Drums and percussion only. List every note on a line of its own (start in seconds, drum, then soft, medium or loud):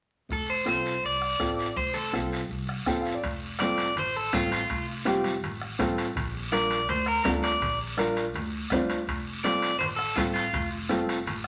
0.29 bombo low medium
0.29 long guiro medium
0.66 bombo rim medium
0.66 short guiro medium
0.86 short guiro medium
1.04 long guiro medium
1.22 bombo rim medium
1.40 bombo low medium
1.40 bombo rim medium
1.40 short guiro medium
1.59 short guiro medium
1.77 bombo low medium
1.77 long guiro medium
2.14 bombo rim medium
2.14 short guiro medium
2.33 short guiro medium
2.51 long guiro medium
2.69 bombo rim medium
2.86 bombo low medium
2.86 bombo rim medium
2.86 short guiro medium
3.05 short guiro medium
3.23 bombo low medium
3.23 high timbale medium
3.23 long guiro medium
3.59 bombo rim medium
3.59 high conga medium
3.59 high timbale medium
3.59 short guiro medium
3.78 high timbale medium
3.78 short guiro medium
3.96 low conga medium
3.96 high timbale medium
3.96 long guiro medium
4.33 bombo low medium
4.33 bombo rim medium
4.33 high conga medium
4.33 low conga medium
4.33 high timbale medium
4.33 short guiro medium
4.52 high timbale medium
4.52 short guiro medium
4.70 bombo low medium
4.70 high timbale medium
4.70 long guiro medium
5.06 bombo rim medium
5.06 high conga medium
5.06 high timbale medium
5.06 short guiro medium
5.24 high conga medium
5.24 high timbale medium
5.24 short guiro medium
5.43 low conga medium
5.43 high timbale medium
5.43 long guiro medium
5.61 bombo rim medium
5.79 bombo low medium
5.79 bombo rim medium
5.79 high conga medium
5.79 low conga medium
5.79 high timbale medium
5.79 short guiro medium
5.98 high timbale medium
5.98 short guiro medium
6.15 bombo low medium
6.15 low conga medium
6.15 high timbale medium
6.15 long guiro medium
6.52 bombo rim medium
6.52 high conga medium
6.52 high timbale medium
6.52 short guiro medium
6.71 high timbale medium
6.71 short guiro medium
6.89 low conga medium
6.89 high timbale medium
6.89 long guiro medium
7.06 bombo rim medium
7.25 bombo low medium
7.25 bombo rim medium
7.25 high conga medium
7.25 low conga medium
7.25 high timbale medium
7.25 low timbale medium
7.25 short guiro medium
7.44 high timbale medium
7.44 short guiro medium
7.60 bombo low medium
7.60 low conga medium
7.60 high timbale medium
7.60 long guiro medium
7.97 bombo rim medium
7.97 high conga medium
7.97 high timbale medium
7.97 short guiro medium
8.16 high timbale medium
8.16 short guiro medium
8.34 low conga medium
8.34 high timbale medium
8.34 long guiro medium
8.70 bombo low medium
8.70 bombo rim medium
8.70 high conga medium
8.70 low conga medium
8.70 high timbale medium
8.70 low timbale medium
8.70 short guiro medium
8.90 high timbale medium
8.90 short guiro medium
9.07 bombo low medium
9.07 high timbale medium
9.07 long guiro medium
9.44 bombo rim medium
9.44 high conga medium
9.44 high timbale medium
9.44 short guiro medium
9.62 high timbale medium
9.62 short guiro medium
9.81 low conga medium
9.81 high timbale medium
9.81 long guiro medium
9.99 bombo rim medium
10.16 bombo low medium
10.16 bombo rim medium
10.16 high conga medium
10.16 high timbale medium
10.16 short guiro medium
10.36 high timbale medium
10.36 short guiro medium
10.53 bombo low medium
10.53 low conga medium
10.53 high timbale medium
10.53 long guiro medium
10.89 bombo rim medium
10.89 high conga medium
10.89 high timbale medium
10.89 short guiro medium
11.09 high timbale medium
11.09 short guiro medium
11.26 low conga medium
11.26 high timbale medium
11.26 long guiro medium